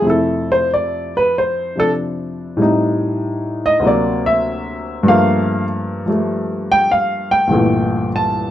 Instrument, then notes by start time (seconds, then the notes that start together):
grand piano
0.02 F2 C3 A3
0.07 E4 A4
0.52 C5
0.74 D5
1.17 B4
1.38 C5
1.76 C3 F3 D4 A4
2.57 A2 G3 C4
2.62 D#4
3.66 D#5
3.80 D2 C3 F#3
3.85 A#3 D5
4.26 E5
5.03 G2 F3 A3
5.08 A#3 F5
6.06 F3 G3 A3
6.72 G5
6.91 F5
7.31 G5
7.47 C2 G2 D3 E3 A3
7.52 A#2
8.16 A5